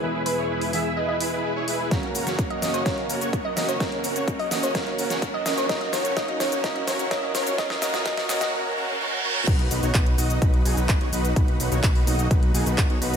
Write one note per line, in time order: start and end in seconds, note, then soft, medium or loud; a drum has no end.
0.00 1.88 E2 medium
0.00 1.87 B2 medium
0.00 0.72 E3 medium
0.00 1.88 G#3 medium
0.00 0.02 B3 medium
0.00 0.70 B3 medium
0.00 0.02 E4 medium
0.00 0.70 E4 medium
0.00 0.23 E4 medium
0.00 0.03 G#4 medium
0.00 0.23 G#4 medium
0.00 0.71 G#4 medium
0.00 0.04 B4 loud
0.00 0.23 B4 loud
0.00 0.71 B4 medium
0.00 riser medium
0.26 0.36 E4 medium
0.26 0.36 G#4 medium
0.26 0.36 B4 loud
0.26 0.41 B4 loud
0.26 open hi-hat loud
0.38 0.47 E4 loud
0.38 0.47 G#4 medium
0.38 0.47 C#5 loud
0.50 0.70 E4 medium
0.50 0.70 G#4 medium
0.50 0.70 B4 medium
0.61 open hi-hat medium
0.72 1.88 E3 medium
0.72 1.88 B3 medium
0.72 1.89 E4 medium
0.72 0.93 E4 loud
0.72 0.93 G#4 medium
0.72 1.89 G#4 medium
0.72 0.93 E5 loud
0.72 1.89 E5 medium
0.72 open hi-hat loud
0.97 1.18 E4 medium
0.97 1.18 G#4 medium
0.97 1.18 B4 medium
0.97 1.04 D#5 medium
1.09 1.16 D#5 medium
1.21 1.31 E4 medium
1.21 1.31 G#4 medium
1.21 1.31 B4 loud
1.21 open hi-hat loud
1.32 1.53 E4 medium
1.32 1.53 G#4 medium
1.32 1.53 B4 medium
1.56 1.65 E4 medium
1.56 1.65 G#4 medium
1.56 1.65 C#5 medium
1.68 1.88 E4 loud
1.68 1.88 G#4 medium
1.68 1.88 B4 loud
1.68 open hi-hat loud
1.90 5.66 F#2 medium
1.90 5.66 C#3 medium
1.90 2.59 A#3 medium
1.90 5.66 A#3 medium
1.90 2.59 C#4 medium
1.90 2.11 C#4 medium
1.90 2.11 F#4 medium
1.90 2.60 F#4 medium
1.90 2.11 A#4 medium
1.90 2.60 A#4 medium
1.90 kick loud
1.90 snare soft
1.90 closed hi-hat medium
1.90 cabasa soft
2.03 closed hi-hat soft
2.15 2.25 C#4 medium
2.15 2.25 F#4 medium
2.15 2.25 A#4 medium
2.15 open hi-hat loud
2.15 cabasa medium
2.27 2.36 C#4 medium
2.27 2.36 F#4 medium
2.27 2.36 C#5 loud
2.27 snare soft
2.27 closed hi-hat soft
2.27 cabasa soft
2.39 2.59 C#4 medium
2.39 2.59 F#4 medium
2.39 2.59 A#4 medium
2.39 kick loud
2.39 closed hi-hat medium
2.39 cabasa soft
2.50 2.58 D#5 medium
2.50 closed hi-hat soft
2.61 2.83 A#3 medium
2.61 2.84 C#4 medium
2.61 2.82 C#4 medium
2.61 2.82 F#4 medium
2.61 2.84 F#4 medium
2.61 2.85 A#4 medium
2.61 2.70 D#5 medium
2.61 2.82 D#5 loud
2.61 snare medium
2.61 open hi-hat loud
2.61 cabasa medium
2.74 2.84 C#5 medium
2.74 closed hi-hat soft
2.74 cabasa soft
2.85 3.53 A#3 medium
2.85 3.54 C#4 medium
2.85 3.06 C#4 medium
2.85 3.06 F#4 medium
2.85 3.54 F#4 medium
2.85 3.06 A#4 medium
2.85 3.55 A#4 loud
2.85 kick loud
2.85 snare medium
2.85 closed hi-hat medium
2.85 cabasa soft
2.98 closed hi-hat soft
3.10 3.20 C#4 medium
3.10 3.20 F#4 medium
3.10 3.20 A#4 medium
3.10 open hi-hat loud
3.10 cabasa medium
3.21 3.30 C#4 medium
3.21 3.30 F#4 medium
3.21 3.30 C#5 loud
3.21 closed hi-hat soft
3.21 cabasa soft
3.33 kick loud
3.33 closed hi-hat medium
3.33 cabasa soft
3.45 3.52 D#5 medium
3.56 3.78 A#3 medium
3.56 3.78 C#4 medium
3.56 3.77 C#4 medium
3.56 3.77 F#4 medium
3.56 3.79 F#4 medium
3.56 3.79 A#4 medium
3.56 3.64 D#5 medium
3.56 3.77 D#5 loud
3.56 snare medium
3.56 open hi-hat loud
3.56 cabasa medium
3.69 3.79 C#5 medium
3.69 closed hi-hat soft
3.69 cabasa soft
3.79 4.48 A#3 medium
3.79 4.48 C#4 medium
3.79 4.00 C#4 medium
3.79 4.00 F#4 medium
3.79 4.49 F#4 medium
3.79 4.00 A#4 loud
3.79 4.49 A#4 loud
3.79 kick loud
3.79 snare medium
3.79 closed hi-hat medium
3.79 cabasa soft
3.92 closed hi-hat soft
4.04 4.14 C#4 medium
4.04 4.14 F#4 medium
4.04 4.14 A#4 medium
4.04 open hi-hat loud
4.04 cabasa medium
4.16 4.25 C#4 medium
4.16 4.25 F#4 medium
4.16 4.25 C#5 loud
4.16 closed hi-hat soft
4.16 cabasa soft
4.28 4.48 C#4 medium
4.28 4.48 F#4 medium
4.28 4.48 A#4 medium
4.28 kick loud
4.28 closed hi-hat medium
4.28 cabasa soft
4.39 4.47 D#5 medium
4.39 open hi-hat medium
4.50 4.72 A#3 medium
4.50 4.73 C#4 medium
4.50 4.71 C#4 medium
4.50 4.71 F#4 medium
4.50 4.73 F#4 medium
4.50 4.74 A#4 loud
4.50 4.71 D#5 loud
4.50 4.59 D#5 medium
4.50 snare medium
4.50 open hi-hat loud
4.50 cabasa medium
4.63 4.73 C#5 medium
4.63 closed hi-hat medium
4.63 cabasa soft
4.74 5.42 A#3 medium
4.74 5.43 C#4 medium
4.74 4.95 F#4 medium
4.74 5.43 F#4 medium
4.74 4.95 A#4 medium
4.74 5.43 A#4 loud
4.74 kick loud
4.74 snare medium
4.74 closed hi-hat medium
4.74 cabasa soft
4.87 closed hi-hat soft
4.99 5.09 C#4 medium
4.99 5.09 F#4 medium
4.99 5.09 A#4 medium
4.99 open hi-hat loud
4.99 cabasa medium
5.10 5.19 C#4 medium
5.10 5.19 F#4 medium
5.10 5.19 C#5 loud
5.10 snare medium
5.10 closed hi-hat medium
5.10 cabasa soft
5.22 5.43 C#4 medium
5.22 5.43 F#4 medium
5.22 kick loud
5.22 closed hi-hat medium
5.22 cabasa soft
5.34 5.42 D#5 medium
5.45 5.67 A#3 medium
5.45 5.67 C#4 medium
5.45 5.66 C#4 loud
5.45 5.66 F#4 medium
5.45 5.68 F#4 medium
5.45 5.68 A#4 medium
5.45 5.66 D#5 loud
5.45 5.53 D#5 medium
5.45 snare medium
5.45 open hi-hat loud
5.45 cabasa medium
5.58 5.67 C#5 medium
5.58 closed hi-hat medium
5.58 cabasa soft
5.68 8.50 E3 medium
5.68 6.14 A#3 medium
5.68 6.15 C#4 medium
5.68 5.89 C#4 medium
5.68 8.50 C#4 medium
5.68 8.50 D#4 medium
5.68 5.89 F#4 medium
5.68 6.15 F#4 medium
5.68 5.89 A#4 loud
5.68 6.15 A#4 loud
5.68 5.77 D#5 medium
5.68 kick loud
5.68 snare medium
5.68 closed hi-hat medium
5.68 cabasa soft
5.81 5.89 D#5 medium
5.81 closed hi-hat soft
5.93 6.03 C#4 medium
5.93 6.03 F#4 medium
5.93 6.03 A#4 loud
5.93 6.08 C#5 medium
5.93 snare medium
5.93 open hi-hat loud
5.93 cabasa medium
6.05 6.14 C#4 loud
6.05 6.14 F#4 medium
6.05 6.14 C#5 loud
6.05 closed hi-hat medium
6.05 cabasa soft
6.15 6.61 A#3 loud
6.15 6.62 C#4 medium
6.15 6.37 C#4 medium
6.15 6.37 F#4 medium
6.15 6.62 F#4 medium
6.15 6.63 A#4 loud
6.15 6.24 D#5 medium
6.15 kick loud
6.15 snare medium
6.15 closed hi-hat medium
6.15 cabasa soft
6.28 6.36 D#5 medium
6.28 closed hi-hat soft
6.40 6.50 C#4 medium
6.40 6.50 F#4 medium
6.40 6.50 A#4 loud
6.40 6.55 C#5 medium
6.40 snare medium
6.40 open hi-hat loud
6.40 cabasa medium
6.52 6.61 C#4 loud
6.52 6.61 F#4 medium
6.52 6.61 C#5 loud
6.52 closed hi-hat medium
6.52 cabasa soft
6.63 7.08 A#3 medium
6.63 7.09 C#4 medium
6.63 6.84 C#4 medium
6.63 6.84 F#4 medium
6.63 7.09 F#4 medium
6.63 6.84 A#4 loud
6.63 7.10 A#4 loud
6.63 6.71 D#5 medium
6.63 kick loud
6.63 snare medium
6.63 closed hi-hat medium
6.63 cabasa soft
6.76 6.83 D#5 medium
6.76 closed hi-hat soft
6.87 6.98 C#4 medium
6.87 6.98 F#4 medium
6.87 6.98 A#4 medium
6.87 7.02 C#5 medium
6.87 snare medium
6.87 open hi-hat loud
6.87 cabasa medium
6.99 7.08 C#4 loud
6.99 7.08 F#4 medium
6.99 7.08 C#5 loud
6.99 closed hi-hat medium
6.99 cabasa soft
7.10 7.56 A#3 loud
7.10 7.56 C#4 medium
7.10 7.31 C#4 medium
7.10 7.57 F#4 medium
7.10 7.31 A#4 loud
7.10 7.57 A#4 loud
7.10 7.19 D#5 medium
7.10 kick loud
7.10 snare medium
7.10 closed hi-hat medium
7.10 cabasa soft
7.23 7.30 D#5 medium
7.35 7.45 C#4 medium
7.35 7.45 F#4 medium
7.35 7.45 A#4 loud
7.35 7.49 C#5 loud
7.35 snare medium
7.35 open hi-hat loud
7.35 cabasa medium
7.47 7.56 C#4 loud
7.47 7.56 F#4 medium
7.47 7.56 C#5 loud
7.47 closed hi-hat medium
7.47 cabasa soft
7.57 7.79 A#3 loud
7.57 7.80 C#4 medium
7.57 7.80 F#4 medium
7.57 7.81 A#4 loud
7.57 7.66 D#5 medium
7.57 kick loud
7.57 snare medium
7.57 closed hi-hat medium
7.57 cabasa soft
7.70 7.78 D#5 medium
7.70 snare medium
7.70 closed hi-hat soft
7.81 8.03 A#3 loud
7.81 8.04 C#4 medium
7.81 8.02 C#4 medium
7.81 8.02 F#4 medium
7.81 8.04 F#4 medium
7.81 8.02 A#4 loud
7.81 8.04 A#4 loud
7.81 7.90 D#5 medium
7.81 snare medium
7.81 open hi-hat loud
7.81 cabasa medium
7.94 8.01 D#5 medium
7.94 snare medium
7.94 closed hi-hat medium
7.94 cabasa soft
8.04 8.26 A#3 loud
8.04 8.27 C#4 medium
8.04 8.26 C#4 medium
8.04 8.26 F#4 medium
8.04 8.28 F#4 medium
8.04 8.26 A#4 loud
8.04 8.28 A#4 loud
8.04 8.13 D#5 medium
8.04 kick loud
8.04 snare loud
8.04 closed hi-hat medium
8.04 cabasa soft
8.17 8.25 D#5 medium
8.17 snare medium
8.17 open hi-hat medium
8.28 8.50 A#3 loud
8.28 8.51 C#4 medium
8.28 8.49 C#4 medium
8.28 8.49 F#4 medium
8.28 8.51 F#4 loud
8.28 8.49 A#4 loud
8.28 8.52 A#4 loud
8.28 8.37 D#5 medium
8.28 snare loud
8.28 open hi-hat loud
8.28 cabasa medium
8.41 8.49 D#5 medium
8.41 snare medium
8.41 closed hi-hat medium
8.41 cabasa soft
8.53 8.73 C#4 medium
8.53 8.73 F#4 medium
8.53 8.73 A#4 loud
8.53 reverse cymbal medium
8.76 8.97 C#4 medium
8.76 8.97 F#4 medium
8.76 8.97 A#4 loud
9.00 9.20 C#4 medium
9.00 9.20 F#4 medium
9.00 9.20 A#4 loud
9.24 9.44 C#4 loud
9.24 9.44 F#4 medium
9.24 9.44 A#4 loud
9.47 9.69 B1 loud
9.47 13.17 F#3 medium
9.47 11.34 B3 medium
9.47 9.67 D#4 medium
9.47 13.17 D#4 medium
9.47 9.67 F#4 medium
9.47 9.67 B4 loud
9.47 kick loud
9.47 closed hi-hat medium
9.47 crash loud
9.47 cabasa soft
9.59 closed hi-hat soft
9.71 9.80 B1 loud
9.71 9.81 D#4 medium
9.71 9.81 F#4 medium
9.71 9.81 B4 loud
9.71 open hi-hat loud
9.71 cabasa medium
9.83 9.92 B1 loud
9.83 9.92 D#4 medium
9.83 9.92 F#4 medium
9.83 9.92 C#5 loud
9.83 closed hi-hat soft
9.83 cabasa soft
9.94 10.16 B1 loud
9.94 10.15 D#4 medium
9.94 10.15 B4 medium
9.94 kick loud
9.94 clap loud
9.94 closed hi-hat loud
9.94 cabasa soft
10.06 closed hi-hat soft
10.18 10.39 B1 medium
10.18 10.38 D#4 loud
10.18 10.38 F#4 medium
10.18 10.38 D#5 loud
10.18 open hi-hat loud
10.18 cabasa medium
10.30 closed hi-hat soft
10.30 cabasa soft
10.42 10.63 B1 loud
10.42 10.63 D#4 medium
10.42 10.63 F#4 medium
10.42 10.63 B4 medium
10.42 kick loud
10.42 closed hi-hat loud
10.42 cabasa soft
10.54 closed hi-hat soft
10.65 10.75 B1 loud
10.65 10.76 D#4 medium
10.65 10.76 F#4 medium
10.65 10.76 G#4 loud
10.65 open hi-hat loud
10.65 cabasa medium
10.77 10.99 B1 loud
10.77 10.98 D#4 medium
10.77 10.98 F#4 medium
10.77 10.98 B4 medium
10.77 closed hi-hat soft
10.77 cabasa soft
10.89 kick loud
10.89 clap loud
10.89 closed hi-hat loud
10.89 cabasa soft
11.01 11.10 B1 loud
11.01 11.10 D#4 medium
11.01 11.10 F#4 medium
11.01 11.10 C#5 loud
11.01 closed hi-hat soft
11.13 11.34 B1 medium
11.13 11.33 D#4 loud
11.13 11.33 F#4 medium
11.13 11.33 B4 loud
11.13 open hi-hat loud
11.13 cabasa medium
11.25 closed hi-hat soft
11.25 cabasa soft
11.36 11.58 B1 loud
11.36 13.17 A#3 medium
11.36 11.56 B4 loud
11.36 kick loud
11.36 closed hi-hat medium
11.36 cabasa soft
11.48 closed hi-hat soft
11.60 11.69 B1 medium
11.60 11.70 D#4 medium
11.60 11.70 F#4 medium
11.60 11.70 B4 loud
11.60 open hi-hat loud
11.60 cabasa medium
11.72 11.81 B1 loud
11.72 11.81 D#4 loud
11.72 11.81 F#4 medium
11.72 11.81 C#5 loud
11.72 closed hi-hat soft
11.72 cabasa soft
11.83 12.05 B1 loud
11.83 kick loud
11.83 clap loud
11.83 closed hi-hat loud
11.83 cabasa soft
11.95 open hi-hat medium
12.07 12.28 B1 loud
12.07 12.27 D#4 loud
12.07 12.27 F#4 medium
12.07 12.27 D#5 loud
12.07 open hi-hat loud
12.07 cabasa medium
12.19 closed hi-hat soft
12.19 cabasa soft
12.31 12.52 B1 loud
12.31 12.52 D#4 medium
12.31 12.52 B4 medium
12.31 kick loud
12.31 closed hi-hat medium
12.31 cabasa soft
12.43 closed hi-hat soft
12.54 12.64 B1 loud
12.54 12.64 D#4 medium
12.54 12.64 F#4 medium
12.54 12.64 G#4 loud
12.54 open hi-hat loud
12.54 cabasa medium
12.66 12.88 B1 medium
12.66 12.87 D#4 medium
12.66 12.87 F#4 medium
12.66 12.87 B4 medium
12.66 closed hi-hat soft
12.66 cabasa soft
12.78 kick loud
12.78 clap loud
12.78 closed hi-hat loud
12.78 cabasa soft
12.90 12.99 B1 loud
12.90 12.99 D#4 medium
12.90 12.99 F#4 medium
12.90 12.99 C#5 loud
12.90 closed hi-hat soft
13.02 13.17 B1 medium
13.02 13.17 D#4 loud
13.02 13.17 F#4 medium
13.02 13.17 B4 loud
13.02 open hi-hat loud
13.02 cabasa medium
13.14 closed hi-hat soft